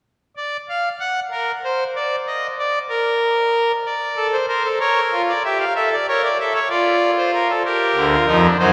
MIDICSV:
0, 0, Header, 1, 2, 480
1, 0, Start_track
1, 0, Key_signature, -2, "minor"
1, 0, Tempo, 632244
1, 46, Time_signature, 6, 3, 24, 8
1, 6626, End_track
2, 0, Start_track
2, 0, Title_t, "Pipe organ"
2, 0, Program_c, 0, 19
2, 276, Note_on_c, 0, 74, 55
2, 430, Note_off_c, 0, 74, 0
2, 525, Note_on_c, 0, 77, 64
2, 676, Note_off_c, 0, 77, 0
2, 757, Note_on_c, 0, 78, 67
2, 911, Note_off_c, 0, 78, 0
2, 992, Note_on_c, 0, 70, 54
2, 1148, Note_off_c, 0, 70, 0
2, 1244, Note_on_c, 0, 72, 58
2, 1397, Note_off_c, 0, 72, 0
2, 1482, Note_on_c, 0, 74, 60
2, 1635, Note_off_c, 0, 74, 0
2, 1722, Note_on_c, 0, 75, 57
2, 1875, Note_off_c, 0, 75, 0
2, 1961, Note_on_c, 0, 74, 64
2, 2114, Note_off_c, 0, 74, 0
2, 2189, Note_on_c, 0, 70, 66
2, 2820, Note_off_c, 0, 70, 0
2, 2925, Note_on_c, 0, 74, 46
2, 3158, Note_on_c, 0, 69, 67
2, 3239, Note_off_c, 0, 74, 0
2, 3281, Note_on_c, 0, 72, 57
2, 3312, Note_off_c, 0, 69, 0
2, 3385, Note_off_c, 0, 72, 0
2, 3399, Note_on_c, 0, 70, 54
2, 3400, Note_on_c, 0, 72, 66
2, 3509, Note_off_c, 0, 70, 0
2, 3521, Note_on_c, 0, 69, 50
2, 3553, Note_off_c, 0, 72, 0
2, 3630, Note_off_c, 0, 69, 0
2, 3643, Note_on_c, 0, 70, 52
2, 3643, Note_on_c, 0, 73, 79
2, 3796, Note_off_c, 0, 73, 0
2, 3887, Note_on_c, 0, 65, 65
2, 3958, Note_off_c, 0, 70, 0
2, 4010, Note_on_c, 0, 74, 55
2, 4038, Note_off_c, 0, 65, 0
2, 4116, Note_off_c, 0, 74, 0
2, 4131, Note_on_c, 0, 76, 55
2, 4133, Note_on_c, 0, 67, 60
2, 4236, Note_off_c, 0, 76, 0
2, 4250, Note_on_c, 0, 77, 50
2, 4282, Note_off_c, 0, 67, 0
2, 4355, Note_off_c, 0, 77, 0
2, 4366, Note_on_c, 0, 76, 56
2, 4368, Note_on_c, 0, 69, 67
2, 4473, Note_off_c, 0, 76, 0
2, 4499, Note_on_c, 0, 74, 60
2, 4519, Note_off_c, 0, 69, 0
2, 4600, Note_off_c, 0, 74, 0
2, 4613, Note_on_c, 0, 73, 59
2, 4615, Note_on_c, 0, 70, 75
2, 4716, Note_off_c, 0, 73, 0
2, 4735, Note_on_c, 0, 74, 66
2, 4763, Note_off_c, 0, 70, 0
2, 4837, Note_off_c, 0, 74, 0
2, 4855, Note_on_c, 0, 69, 71
2, 4856, Note_on_c, 0, 76, 59
2, 4958, Note_off_c, 0, 76, 0
2, 4967, Note_on_c, 0, 73, 62
2, 5003, Note_off_c, 0, 69, 0
2, 5072, Note_off_c, 0, 73, 0
2, 5082, Note_on_c, 0, 74, 67
2, 5083, Note_on_c, 0, 65, 73
2, 5394, Note_off_c, 0, 74, 0
2, 5445, Note_on_c, 0, 72, 62
2, 5550, Note_off_c, 0, 72, 0
2, 5567, Note_on_c, 0, 70, 61
2, 5671, Note_off_c, 0, 70, 0
2, 5684, Note_on_c, 0, 69, 57
2, 5703, Note_off_c, 0, 65, 0
2, 5789, Note_off_c, 0, 69, 0
2, 5803, Note_on_c, 0, 70, 58
2, 5805, Note_on_c, 0, 67, 65
2, 6040, Note_on_c, 0, 38, 76
2, 6043, Note_on_c, 0, 50, 74
2, 6115, Note_off_c, 0, 67, 0
2, 6165, Note_on_c, 0, 65, 65
2, 6191, Note_off_c, 0, 38, 0
2, 6193, Note_off_c, 0, 50, 0
2, 6269, Note_off_c, 0, 65, 0
2, 6278, Note_on_c, 0, 63, 68
2, 6281, Note_on_c, 0, 41, 74
2, 6281, Note_on_c, 0, 53, 73
2, 6385, Note_off_c, 0, 63, 0
2, 6402, Note_on_c, 0, 62, 56
2, 6423, Note_off_c, 0, 70, 0
2, 6431, Note_off_c, 0, 41, 0
2, 6431, Note_off_c, 0, 53, 0
2, 6507, Note_off_c, 0, 62, 0
2, 6515, Note_on_c, 0, 42, 80
2, 6517, Note_on_c, 0, 54, 85
2, 6517, Note_on_c, 0, 63, 63
2, 6518, Note_on_c, 0, 72, 68
2, 6626, Note_off_c, 0, 42, 0
2, 6626, Note_off_c, 0, 54, 0
2, 6626, Note_off_c, 0, 63, 0
2, 6626, Note_off_c, 0, 72, 0
2, 6626, End_track
0, 0, End_of_file